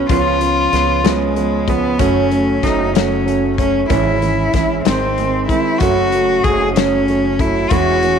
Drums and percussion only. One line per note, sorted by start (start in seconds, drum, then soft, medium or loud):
0.09 kick loud
0.09 closed hi-hat medium
0.41 closed hi-hat medium
0.73 snare soft
0.73 closed hi-hat medium
1.05 snare loud
1.05 closed hi-hat medium
1.36 closed hi-hat soft
1.68 kick medium
1.68 closed hi-hat medium
1.99 kick loud
1.99 closed hi-hat medium
2.31 closed hi-hat medium
2.63 kick medium
2.63 snare soft
2.63 closed hi-hat medium
2.95 snare loud
2.95 closed hi-hat medium
3.28 closed hi-hat soft
3.58 kick medium
3.58 closed hi-hat medium
3.90 kick loud
3.90 closed hi-hat medium
4.22 closed hi-hat medium
4.53 kick medium
4.53 snare soft
4.53 closed hi-hat medium
4.85 snare loud
4.85 closed hi-hat medium
5.18 closed hi-hat soft
5.49 kick medium
5.49 closed hi-hat medium
5.80 kick loud
5.80 closed hi-hat medium
6.12 closed hi-hat medium
6.44 kick medium
6.44 closed hi-hat soft
6.76 snare loud
6.76 closed hi-hat medium
7.08 closed hi-hat soft
7.39 kick medium
7.39 closed hi-hat soft
7.70 kick loud
7.70 closed hi-hat medium
8.03 closed hi-hat medium